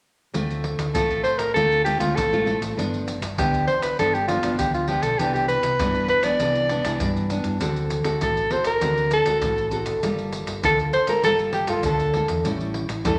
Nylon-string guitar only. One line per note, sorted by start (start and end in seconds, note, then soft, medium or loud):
0.34 0.92 D3 medium
0.34 0.90 A3 soft
0.34 0.90 C4 soft
0.34 0.90 F4 soft
0.95 1.53 A2 soft
0.95 1.51 A3 soft
0.95 1.51 C4 medium
0.95 1.51 F4 soft
1.56 2.13 D3 soft
1.56 1.81 A3 medium
1.56 1.81 C4 soft
1.56 1.82 F4 medium
1.86 1.95 A3 soft
1.86 1.95 C4 soft
1.86 1.95 F4 soft
2.00 2.26 A3 medium
2.00 2.26 C4 medium
2.00 2.27 F4 medium
2.16 2.74 A2 medium
2.32 2.42 A3 medium
2.32 2.42 C4 medium
2.32 2.43 F4 medium
2.46 2.72 A3 soft
2.46 2.72 C4 soft
2.46 2.72 F4 medium
2.77 3.35 G2 soft
2.77 3.16 F3 soft
2.77 3.16 B3 soft
2.77 3.17 D4 medium
3.38 3.95 D3 soft
3.38 3.77 F3 soft
3.38 3.77 B3 soft
3.38 3.77 D4 medium
3.99 4.56 G2 soft
3.99 4.17 F3 medium
3.99 4.17 B3 soft
3.99 4.17 D4 medium
4.29 4.38 F3 soft
4.29 4.38 B3 soft
4.29 4.38 D4 medium
4.43 4.84 F3 medium
4.43 4.84 B3 medium
4.43 4.84 D4 medium
4.59 5.16 D3 medium
4.88 5.14 F3 medium
4.88 5.14 B3 soft
4.88 5.15 D4 medium
5.20 5.77 C3 medium
5.20 5.59 E3 soft
5.20 5.59 B3 soft
5.20 5.59 D4 medium
5.81 6.38 G2 soft
5.81 6.21 E3 soft
5.81 6.21 B3 soft
5.81 6.21 D4 soft
6.24 6.35 E3 medium
6.24 6.35 B3 medium
6.24 6.36 D4 medium
6.41 6.98 C3 medium
6.41 6.66 E3 medium
6.41 6.66 B3 medium
6.41 6.67 D4 medium
6.70 6.81 E3 soft
6.70 6.81 B3 soft
6.70 6.81 D4 medium
6.85 7.26 E3 medium
6.85 7.26 B3 medium
6.85 7.26 D4 medium
7.02 7.59 G2 medium
7.31 7.56 E3 medium
7.31 7.57 B3 soft
7.31 7.57 D4 medium
7.61 8.19 D3 medium
7.61 8.02 C4 soft
7.61 8.02 F#4 soft
7.61 8.02 A4 medium
8.04 8.46 C4 soft
8.04 8.46 F#4 medium
8.04 8.47 A4 medium
8.22 8.79 A2 medium
8.51 8.77 C4 medium
8.51 8.77 F#4 soft
8.51 8.77 A4 soft
8.82 9.40 D3 medium
8.82 9.23 C4 soft
8.82 9.23 F#4 soft
9.26 9.68 C4 medium
9.26 9.68 F#4 medium
9.26 9.68 A4 medium
9.43 10.00 A2 medium
9.73 9.98 C4 soft
9.73 9.98 F#4 soft
9.73 9.99 A4 medium
10.03 10.61 G3 medium
10.03 10.59 A#3 soft
10.03 10.59 F4 soft
10.03 10.59 A4 soft
10.64 11.21 D3 soft
10.64 10.92 A#3 soft
10.64 10.92 F4 medium
10.64 10.92 A4 medium
11.08 11.19 A#3 soft
11.08 11.19 F4 medium
11.08 11.19 A4 medium
11.25 11.82 G3 medium
11.25 11.65 A#3 medium
11.25 11.66 F4 soft
11.25 11.66 A4 medium
11.69 12.10 A#3 medium
11.69 12.10 F4 medium
11.69 12.10 A4 medium
11.85 12.42 D3 medium
12.15 12.33 A#3 medium
12.15 12.33 F4 medium
12.15 12.33 A4 medium
12.45 13.03 A2 soft
12.45 12.84 G3 soft
12.45 12.85 C#4 medium
12.45 12.85 E4 medium
13.06 13.19 E3 soft
13.06 13.19 G3 soft
13.06 13.19 C#4 soft
13.06 13.19 E4 soft